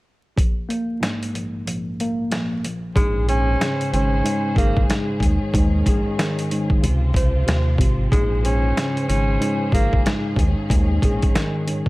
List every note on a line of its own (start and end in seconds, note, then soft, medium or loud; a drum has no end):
0.36 1.32 A#1 medium
0.36 kick loud
0.36 closed hi-hat medium
0.69 1.99 A#3 medium
0.69 closed hi-hat medium
1.00 2.63 G#2 medium
1.00 snare loud
1.00 closed hi-hat medium
1.23 closed hi-hat medium
1.33 1.65 A#1 medium
1.33 closed hi-hat medium
1.66 2.30 A#1 medium
1.66 closed hi-hat medium
2.00 2.64 A#3 medium
2.00 closed hi-hat medium
2.31 2.64 A#1 medium
2.31 snare loud
2.31 closed hi-hat medium
2.65 2.96 A#1 medium
2.65 closed hi-hat medium
2.95 3.56 A#1 loud
2.95 3.92 G#2 loud
2.95 5.19 C#3 medium
2.95 3.25 G#3 medium
2.95 6.79 G#4 medium
2.95 5.19 C5 medium
2.95 kick loud
2.95 closed hi-hat medium
3.28 3.89 C#4 loud
3.28 4.57 G#4 medium
3.28 closed hi-hat medium
3.61 5.22 C#3 medium
3.61 snare loud
3.61 closed hi-hat medium
3.81 closed hi-hat medium
3.93 4.22 G#1 medium
3.93 4.23 G#2 medium
3.93 4.53 C#4 medium
3.93 closed hi-hat medium
4.24 4.88 G#2 medium
4.24 closed hi-hat loud
4.56 4.86 G#1 medium
4.56 4.86 A#3 medium
4.56 5.22 G#4 medium
4.56 kick loud
4.56 closed hi-hat medium
4.77 kick medium
4.89 5.20 G#2 medium
4.89 snare loud
4.89 closed hi-hat medium
5.20 5.38 D#2 loud
5.20 5.53 G#2 medium
5.20 6.82 D#3 medium
5.20 6.82 C#4 medium
5.20 kick medium
5.20 closed hi-hat medium
5.54 5.83 D#2 loud
5.54 6.50 G#2 medium
5.54 kick loud
5.54 closed hi-hat medium
5.86 6.04 A#1 medium
5.86 6.84 G#4 medium
5.86 kick medium
5.86 closed hi-hat medium
6.18 6.83 D#3 medium
6.18 snare loud
6.18 closed hi-hat loud
6.39 closed hi-hat medium
6.51 6.83 G#2 medium
6.51 closed hi-hat medium
6.70 kick medium
6.82 7.12 C#2 loud
6.82 7.45 C3 medium
6.82 10.34 F3 medium
6.82 8.11 C4 medium
6.82 8.11 F4 medium
6.82 closed hi-hat loud
7.14 7.44 C#2 loud
7.14 8.13 C5 medium
7.14 kick loud
7.14 closed hi-hat medium
7.46 7.77 D#2 loud
7.46 7.79 C3 medium
7.46 snare loud
7.46 closed hi-hat medium
7.78 8.08 G#1 loud
7.78 8.12 C3 medium
7.78 kick loud
7.78 closed hi-hat medium
8.11 8.72 A#1 loud
8.11 9.08 G#2 loud
8.11 8.41 G#3 medium
8.11 11.89 G#4 medium
8.11 10.35 C5 medium
8.11 kick loud
8.11 closed hi-hat medium
8.44 9.05 C#4 medium
8.44 9.73 G#4 medium
8.44 closed hi-hat medium
8.77 10.38 C#3 medium
8.77 snare loud
8.77 closed hi-hat medium
8.97 closed hi-hat medium
9.08 9.38 G#1 loud
9.08 9.39 G#2 medium
9.08 9.69 C#4 medium
9.08 closed hi-hat medium
9.40 10.04 G#2 medium
9.40 closed hi-hat loud
9.72 10.02 G#1 medium
9.72 10.02 A#3 medium
9.72 10.38 G#4 medium
9.72 kick loud
9.72 closed hi-hat medium
9.93 kick loud
10.05 10.36 G#2 medium
10.05 snare loud
10.05 closed hi-hat medium
10.36 10.55 D#2 loud
10.36 10.69 G#2 medium
10.36 11.89 D#3 medium
10.36 11.89 C#4 medium
10.36 kick loud
10.36 closed hi-hat medium
10.70 10.99 D#2 loud
10.70 11.66 G#2 loud
10.70 kick loud
10.70 closed hi-hat medium
11.02 11.20 A#1 medium
11.02 11.89 G#4 medium
11.02 kick medium
11.02 closed hi-hat medium
11.22 kick loud
11.22 closed hi-hat medium
11.35 11.89 D#3 medium
11.35 snare loud
11.35 closed hi-hat medium
11.68 11.89 G#2 medium
11.68 closed hi-hat medium
11.86 kick medium